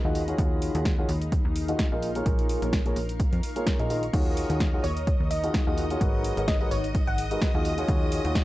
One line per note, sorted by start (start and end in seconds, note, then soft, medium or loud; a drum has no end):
0.00 0.73 G#4 medium
0.00 0.90 D#5 medium
0.00 0.15 B5 medium
0.04 0.35 D#2 medium
0.04 0.21 D#3 loud
0.04 0.21 F4 medium
0.04 0.21 F#4 medium
0.04 0.21 G#4 medium
0.04 0.21 D#5 loud
0.15 2.88 D#4 medium
0.15 open hi-hat medium
0.28 0.37 D#3 medium
0.28 0.37 F4 medium
0.28 0.37 F#4 medium
0.28 0.37 G#4 medium
0.28 0.37 C#5 loud
0.28 2.02 F5 medium
0.28 closed hi-hat medium
0.36 0.70 D#2 loud
0.36 0.72 D#3 medium
0.36 0.72 F#4 medium
0.36 6.01 A#4 medium
0.36 kick loud
0.36 closed hi-hat medium
0.62 open hi-hat loud
0.75 1.05 D#2 loud
0.75 0.91 D#3 medium
0.75 0.91 F4 medium
0.75 0.91 F#4 medium
0.75 0.91 G#4 medium
0.75 0.91 C#5 medium
0.75 closed hi-hat medium
0.85 kick loud
0.85 snare loud
0.85 closed hi-hat medium
0.98 1.08 D#3 medium
0.98 1.08 F4 medium
0.98 1.08 F#4 medium
0.98 1.08 G#4 medium
0.98 1.08 C#5 loud
1.09 1.40 D#2 medium
1.09 open hi-hat medium
1.22 closed hi-hat medium
1.32 kick loud
1.32 closed hi-hat medium
1.45 1.75 D#2 medium
1.56 open hi-hat loud
1.68 1.85 D#3 medium
1.68 1.85 F4 medium
1.68 1.85 F#4 medium
1.68 1.85 G#4 medium
1.68 1.85 D#5 loud
1.68 closed hi-hat medium
1.79 kick loud
1.79 snare loud
1.79 closed hi-hat medium
1.92 2.22 A#1 medium
1.92 2.08 A#3 loud
1.92 2.08 F4 medium
1.92 2.08 G#4 medium
1.92 2.08 A#4 medium
1.92 2.08 D#5 loud
2.02 open hi-hat medium
2.15 2.24 A#3 medium
2.15 2.24 F4 medium
2.15 2.24 G#4 medium
2.15 2.24 A#4 medium
2.15 2.24 C#5 loud
2.15 closed hi-hat medium
2.26 2.58 A#1 loud
2.26 2.59 A#3 medium
2.26 2.59 A#4 medium
2.26 4.13 F5 medium
2.26 kick loud
2.26 closed hi-hat medium
2.33 4.89 C#6 medium
2.39 closed hi-hat soft
2.49 open hi-hat medium
2.58 2.93 A#1 medium
2.58 2.78 A#3 medium
2.58 2.78 F4 medium
2.58 2.78 G#4 medium
2.58 2.78 A#4 medium
2.58 2.78 C#5 medium
2.58 4.79 A#5 medium
2.58 closed hi-hat medium
2.73 kick loud
2.73 snare loud
2.73 closed hi-hat medium
2.86 2.95 A#3 medium
2.86 2.95 F4 medium
2.86 2.95 G#4 medium
2.86 2.95 A#4 medium
2.86 2.95 C#5 loud
2.86 closed hi-hat soft
2.96 3.28 A#1 medium
2.96 open hi-hat medium
3.09 closed hi-hat medium
3.20 kick loud
3.20 closed hi-hat medium
3.32 3.41 F2 loud
3.32 closed hi-hat soft
3.43 open hi-hat loud
3.56 3.76 A#3 medium
3.56 3.76 F4 medium
3.56 3.76 G#4 medium
3.56 3.76 A#4 medium
3.56 3.76 C#5 medium
3.56 closed hi-hat medium
3.67 kick loud
3.67 snare loud
3.67 closed hi-hat medium
3.79 4.10 A#1 medium
3.79 3.88 A#3 medium
3.79 3.88 F4 medium
3.79 3.88 G#4 medium
3.79 3.88 A#4 medium
3.79 3.88 D#5 loud
3.79 closed hi-hat soft
3.90 4.02 D#3 medium
3.90 4.02 F4 medium
3.90 4.02 G#4 medium
3.90 4.02 A#4 medium
3.90 4.02 D#5 loud
3.90 open hi-hat medium
4.03 closed hi-hat medium
4.13 4.45 D#2 loud
4.13 4.47 D#3 medium
4.13 6.67 D#4 medium
4.13 4.47 F4 medium
4.13 4.47 F#4 medium
4.13 4.47 G#4 medium
4.13 4.47 C#5 loud
4.13 8.44 D#5 medium
4.13 8.44 D#6 medium
4.13 kick loud
4.13 closed hi-hat medium
4.13 crash medium
4.37 open hi-hat loud
4.50 4.80 D#2 loud
4.50 4.66 D#3 medium
4.50 4.66 F4 medium
4.50 4.66 F#4 medium
4.50 4.66 G#4 medium
4.50 4.66 C#5 medium
4.50 closed hi-hat medium
4.60 6.67 F#5 medium
4.60 kick loud
4.60 snare loud
4.60 closed hi-hat medium
4.73 4.83 D#3 loud
4.73 4.83 F4 medium
4.73 4.83 F#4 medium
4.73 4.83 G#4 medium
4.73 4.83 C#5 loud
4.84 5.16 D#2 medium
4.84 5.28 C#5 medium
4.84 open hi-hat medium
4.97 closed hi-hat medium
5.07 kick loud
5.07 closed hi-hat medium
5.20 5.50 D#2 medium
5.31 5.48 D#5 medium
5.31 open hi-hat loud
5.43 5.60 D#3 medium
5.43 5.60 F4 medium
5.43 5.60 F#4 medium
5.43 5.60 G#4 medium
5.43 5.60 D#5 medium
5.43 closed hi-hat medium
5.54 kick loud
5.54 snare loud
5.54 closed hi-hat medium
5.67 5.97 D#2 medium
5.67 5.83 D#3 loud
5.67 5.83 F4 medium
5.67 5.83 F#4 medium
5.67 5.83 G#4 medium
5.67 5.83 D#5 loud
5.78 open hi-hat medium
5.90 5.99 F4 medium
5.90 5.99 F#4 medium
5.90 5.99 G#4 medium
5.90 5.99 C#5 loud
5.90 closed hi-hat medium
6.01 6.33 G#1 loud
6.01 6.34 G#3 medium
6.01 6.34 F#4 medium
6.01 8.41 G#4 medium
6.01 6.34 A#4 medium
6.01 6.34 B4 medium
6.01 6.34 C#5 loud
6.01 kick loud
6.01 closed hi-hat medium
6.24 open hi-hat loud
6.37 6.68 G#1 loud
6.37 6.53 G#3 medium
6.37 6.53 F#4 medium
6.37 6.53 A#4 medium
6.37 6.53 B4 medium
6.37 6.53 C#5 medium
6.37 closed hi-hat medium
6.48 6.56 D#5 medium
6.48 kick loud
6.48 snare loud
6.48 closed hi-hat medium
6.53 8.41 D#5 medium
6.61 6.70 G#3 loud
6.61 6.70 F#4 medium
6.61 6.70 A#4 medium
6.61 6.70 B4 medium
6.61 6.70 C#5 loud
6.61 6.67 D#5 medium
6.71 7.03 G#1 medium
6.71 6.89 C#5 medium
6.71 open hi-hat loud
6.84 closed hi-hat medium
6.95 kick loud
6.95 closed hi-hat medium
7.07 7.38 G#1 medium
7.07 7.70 F#5 medium
7.18 open hi-hat loud
7.31 7.47 G#3 medium
7.31 7.47 F#4 medium
7.31 7.47 A#4 medium
7.31 7.47 B4 medium
7.31 7.47 D#5 medium
7.31 closed hi-hat medium
7.42 kick loud
7.42 snare loud
7.42 closed hi-hat medium
7.54 7.85 D#2 medium
7.54 7.71 D#3 loud
7.54 7.71 F4 medium
7.54 7.71 F#4 medium
7.54 7.71 G#4 medium
7.54 7.71 D#5 loud
7.65 8.44 D#4 medium
7.65 open hi-hat loud
7.78 7.87 D#3 medium
7.78 7.87 F4 medium
7.78 7.87 F#4 medium
7.78 7.87 G#4 medium
7.78 7.87 C#5 loud
7.78 closed hi-hat medium
7.85 8.20 D#2 loud
7.85 8.22 D#3 medium
7.85 8.22 F4 medium
7.85 8.22 F#4 medium
7.85 8.22 G#4 medium
7.85 8.44 A#4 medium
7.85 8.22 C#5 loud
7.85 kick loud
7.85 closed hi-hat medium
8.08 8.44 F#5 medium
8.08 open hi-hat loud
8.25 8.44 D#2 loud
8.25 8.41 D#3 medium
8.25 8.41 F4 medium
8.25 8.41 F#4 medium
8.25 8.41 G#4 medium
8.25 8.41 C#5 medium
8.25 closed hi-hat medium
8.35 kick loud
8.35 snare loud
8.35 closed hi-hat medium